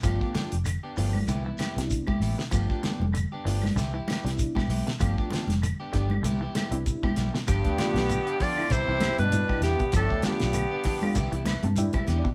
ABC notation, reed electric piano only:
X:1
M:4/4
L:1/16
Q:"Swing 16ths" 1/4=97
K:Gmix
V:1 name="Reed electric piano"
z16 | z16 | z16 | z16 |
z8 z2 b a (3g2 e2 d2 |]
V:2 name="Reed electric piano"
[A,B,DF]3 z3 [F,A,B,D]2 z3 [G,B,DE]2 z3 | [A,B,DF]3 z3 [F,A,B,D]2 z3 [G,B,DE]2 z3 | [A,B,DF]3 z3 [A,B,DG]2 z3 [G,B,DE]2 z3 | z2 [A,B,DF]2 z3 [A,B,DE] z4 [G,B,DE]3 z |
z2 [A,B,DF]2 z3 [A,B,DF] z4 [G,B,DE]3 z |]